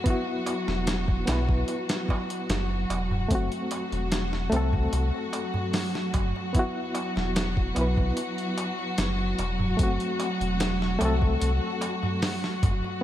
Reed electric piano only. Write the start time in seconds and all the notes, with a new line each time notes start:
0.04 B3 E4
0.10 F#4
1.26 B3 E4
1.32 B4
3.29 A3 C4
3.35 F#4
4.50 A3 C4
4.56 A4
6.53 B3 E4
6.59 F#4
7.75 B3 E4
7.81 B4
9.77 A3 C4
9.83 F#4
10.99 A3 C4
11.05 A4